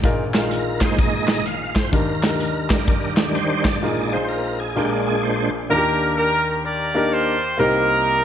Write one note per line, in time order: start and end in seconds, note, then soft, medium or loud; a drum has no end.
0.04 1.89 A#1 medium
0.04 1.89 A#2 medium
0.04 0.21 D#4 medium
0.04 0.21 F4 medium
0.04 0.22 G#4 medium
0.04 0.22 A#4 loud
0.04 kick loud
0.04 closed hi-hat medium
0.34 0.86 D#4 medium
0.34 0.51 F4 medium
0.34 0.86 F4 medium
0.34 0.87 G#4 medium
0.34 0.87 A#4 medium
0.34 snare loud
0.34 clap medium
0.34 closed hi-hat medium
0.51 0.82 A#4 medium
0.51 closed hi-hat medium
0.81 1.42 A#2 medium
0.81 1.42 G#3 soft
0.81 1.43 D#4 medium
0.81 0.97 C5 medium
0.81 kick loud
0.81 snare loud
0.81 clap loud
0.81 closed hi-hat medium
0.98 1.28 D#5 loud
0.98 kick loud
0.98 closed hi-hat medium
1.28 1.46 D#5 loud
1.28 snare loud
1.28 clap medium
1.28 closed hi-hat medium
1.46 1.77 F5 loud
1.46 closed hi-hat medium
1.75 1.91 C5 loud
1.75 kick medium
1.75 snare loud
1.75 clap medium
1.75 closed hi-hat medium
1.92 3.78 D#2 medium
1.92 3.78 D#3 medium
1.92 2.10 D4 medium
1.92 2.10 D#4 medium
1.92 2.10 G4 medium
1.92 3.14 A#4 loud
1.92 2.10 A#4 medium
1.92 kick loud
1.92 closed hi-hat medium
2.23 2.75 D4 medium
2.23 2.75 D#4 medium
2.23 2.75 G4 medium
2.23 2.28 A4 medium
2.23 snare loud
2.23 clap medium
2.23 closed hi-hat medium
2.30 2.78 A#4 medium
2.40 closed hi-hat medium
2.70 3.77 D#3 medium
2.70 3.78 G3 medium
2.70 3.78 D4 medium
2.70 kick loud
2.70 snare loud
2.70 clap loud
2.70 closed hi-hat medium
2.87 kick loud
2.87 closed hi-hat medium
3.17 snare loud
3.17 clap medium
3.17 closed hi-hat medium
3.35 3.66 C5 loud
3.35 closed hi-hat medium
3.65 4.14 D5 loud
3.65 kick medium
3.65 snare loud
3.65 clap medium
3.65 closed hi-hat medium
3.82 4.72 A#1 medium
3.82 4.72 A#2 medium
3.82 4.18 A#2 medium
3.82 4.18 G#3 medium
3.82 3.99 D#4 medium
3.82 4.18 D#4 medium
3.82 3.99 F4 medium
3.82 3.99 G#4 medium
3.82 4.00 A#4 medium
4.12 4.64 D#4 medium
4.12 4.64 F4 medium
4.12 4.64 G#4 medium
4.12 4.28 C5 loud
4.12 4.64 C5 medium
4.29 4.60 A#4 medium
4.60 4.77 G#4 medium
4.76 5.66 A#1 medium
4.76 5.66 A#2 medium
4.76 5.50 A#2 medium
4.76 5.50 G#3 medium
4.76 5.57 D4 medium
4.76 5.51 D4 medium
4.76 5.57 F4 medium
4.76 4.91 G4 medium
4.76 5.57 G#4 medium
4.76 5.57 A#4 medium
5.07 5.24 G#4 medium
5.23 5.51 C5 medium
5.70 7.55 D#2 medium
5.70 7.55 D#3 medium
5.70 6.25 A#3 medium
5.70 6.26 D4 medium
5.70 6.17 D4 medium
5.70 5.78 F4 soft
5.70 6.17 G4 medium
5.70 6.14 A#4 loud
5.70 6.26 A#4 medium
5.77 6.29 G4 medium
6.17 7.08 D4 medium
6.17 6.63 G4 medium
6.17 6.61 A#4 loud
6.64 7.12 G4 medium
6.64 7.55 A#4 medium
6.64 7.11 D5 loud
6.95 7.33 A#3 medium
6.95 7.33 D4 medium
6.95 7.33 D#4 medium
6.95 7.34 G4 medium
6.95 7.34 A#4 medium
7.12 7.56 G4 medium
7.12 7.59 C5 loud
7.58 8.24 C2 medium
7.58 8.24 C3 medium
7.58 8.14 A#3 medium
7.58 8.14 C4 medium
7.58 8.14 D#4 medium
7.58 8.24 D#4 medium
7.58 8.14 G4 medium
7.58 8.24 G4 medium
7.58 8.24 A#4 loud
7.58 8.14 A#4 medium